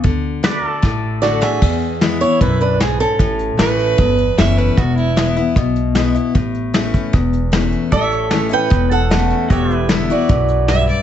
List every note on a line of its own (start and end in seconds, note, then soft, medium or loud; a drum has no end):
0.04 0.64 D2 medium
0.04 0.42 D3 medium
0.04 kick medium
0.04 closed hi-hat medium
0.43 0.81 D3 medium
0.43 0.81 A3 medium
0.43 0.82 D4 medium
0.43 0.82 F#4 medium
0.43 0.70 B4 medium
0.43 1.62 D5 medium
0.43 snare medium
0.43 closed hi-hat medium
0.70 1.61 A4 medium
0.82 1.42 A1 medium
0.82 1.58 A2 medium
0.82 kick loud
0.82 snare medium
1.22 1.41 D3 medium
1.22 1.42 A3 medium
1.22 1.42 D4 medium
1.22 1.41 F#4 medium
1.22 1.40 F#4 medium
1.22 1.41 D5 medium
1.22 snare medium
1.41 1.62 D4 soft
1.41 1.60 F#4 medium
1.41 2.17 G#4 medium
1.41 2.21 E5 loud
1.41 snare medium
1.62 2.21 E2 medium
1.62 kick medium
1.62 crash medium
1.82 closed hi-hat medium
2.01 2.20 E3 medium
2.01 2.20 G#3 medium
2.01 2.21 B3 medium
2.01 2.19 E4 medium
2.01 snare medium
2.01 closed hi-hat medium
2.21 2.41 B3 soft
2.21 2.40 E4 medium
2.21 2.41 C#5 medium
2.21 closed hi-hat medium
2.41 3.00 B1 medium
2.41 2.78 F#2 medium
2.41 2.60 E4 medium
2.41 2.60 B4 medium
2.41 kick loud
2.41 closed hi-hat medium
2.61 2.79 D4 medium
2.61 2.81 B4 medium
2.61 closed hi-hat medium
2.80 3.18 G#2 medium
2.80 2.99 B3 medium
2.80 3.00 G#4 medium
2.80 snare medium
2.80 closed hi-hat medium
3.00 4.14 C#4 medium
3.00 4.14 A4 medium
3.00 closed hi-hat medium
3.19 3.49 A1 medium
3.19 3.95 A2 medium
3.19 kick medium
3.19 closed hi-hat medium
3.39 closed hi-hat medium
3.57 3.91 A1 medium
3.57 3.96 E3 medium
3.57 3.97 A3 medium
3.57 3.97 C#4 medium
3.57 3.97 E4 medium
3.57 4.39 B4 loud
3.57 snare loud
3.57 closed hi-hat medium
3.79 closed hi-hat medium
3.98 4.32 G1 medium
3.98 4.73 E2 medium
3.98 kick loud
3.98 closed hi-hat medium
4.18 closed hi-hat medium
4.38 4.71 F#1 medium
4.38 4.75 E3 medium
4.38 4.76 A3 medium
4.38 4.76 C#4 medium
4.38 4.76 E4 medium
4.38 4.59 E5 medium
4.38 snare medium
4.38 closed hi-hat medium
4.58 4.79 B4 medium
4.58 closed hi-hat medium
4.77 5.37 E1 medium
4.77 5.53 E2 medium
4.77 4.96 F#4 medium
4.77 kick loud
4.77 closed hi-hat medium
4.97 5.35 E4 medium
4.97 closed hi-hat medium
5.16 5.35 E3 medium
5.16 5.36 G#3 medium
5.16 5.36 B3 medium
5.16 5.35 E4 medium
5.16 snare loud
5.16 closed hi-hat medium
5.37 5.56 B3 soft
5.37 5.55 E4 medium
5.37 closed hi-hat medium
5.56 6.15 B1 medium
5.56 6.31 B2 medium
5.56 kick loud
5.56 closed hi-hat medium
5.76 closed hi-hat medium
5.95 6.14 E3 medium
5.95 6.15 G#3 medium
5.95 6.16 B3 medium
5.95 6.13 E4 medium
5.95 snare medium
5.95 closed hi-hat medium
6.15 6.35 B3 soft
6.15 6.34 E4 soft
6.15 closed hi-hat medium
6.35 6.94 A1 medium
6.35 7.10 A2 medium
6.35 kick medium
6.35 closed hi-hat medium
6.55 closed hi-hat medium
6.74 7.11 E3 medium
6.74 7.12 A3 soft
6.74 7.12 C#4 medium
6.74 7.13 E4 medium
6.74 snare loud
6.74 closed hi-hat medium
6.94 kick medium
6.94 closed hi-hat medium
7.13 7.73 E1 medium
7.13 7.88 E2 medium
7.13 kick loud
7.13 closed hi-hat medium
7.33 closed hi-hat medium
7.52 7.90 E3 medium
7.52 7.90 A3 medium
7.52 7.91 C#4 medium
7.52 7.91 E4 medium
7.52 snare loud
7.52 closed hi-hat medium
7.72 closed hi-hat medium
7.92 8.52 A1 medium
7.92 8.67 A2 medium
7.92 9.49 A4 medium
7.92 8.48 A4 medium
7.92 8.12 D5 medium
7.92 8.53 E5 medium
7.92 kick medium
7.92 closed hi-hat medium
8.12 9.49 C#5 medium
8.12 closed hi-hat medium
8.31 8.50 E3 medium
8.31 8.51 A3 medium
8.31 8.50 C#4 medium
8.31 8.48 E4 medium
8.31 snare medium
8.31 closed hi-hat medium
8.49 8.71 C#4 soft
8.49 8.70 E4 medium
8.49 8.89 B4 medium
8.49 closed hi-hat medium
8.53 8.92 G5 medium
8.70 9.31 E1 medium
8.70 9.46 E2 medium
8.70 kick loud
8.70 closed hi-hat medium
8.91 9.47 A4 medium
8.91 9.52 F#5 medium
8.91 closed hi-hat medium
9.11 9.48 E3 medium
9.11 9.49 A3 medium
9.11 9.49 C#4 medium
9.11 9.49 E4 medium
9.11 snare loud
9.11 closed hi-hat medium
9.30 closed hi-hat medium
9.50 10.10 E1 medium
9.50 10.26 E2 medium
9.50 9.75 F#4 medium
9.50 9.88 G4 medium
9.50 9.76 C#5 medium
9.50 9.88 E5 medium
9.50 kick loud
9.50 closed hi-hat medium
9.70 closed hi-hat soft
9.75 11.02 E4 medium
9.75 11.02 B4 medium
9.89 10.08 D3 medium
9.89 10.09 G3 medium
9.89 10.09 B3 medium
9.89 10.09 E4 medium
9.89 snare loud
9.89 closed hi-hat medium
10.10 10.30 B3 soft
10.10 10.29 E4 medium
10.10 10.85 F#4 medium
10.10 10.85 D5 medium
10.10 closed hi-hat medium
10.29 10.89 B1 medium
10.29 10.67 F#2 medium
10.29 kick loud
10.29 closed hi-hat medium
10.48 closed hi-hat medium
10.68 11.02 G2 medium
10.68 10.88 E5 loud
10.68 snare medium
10.68 closed hi-hat medium
10.89 11.02 D5 medium
10.89 closed hi-hat medium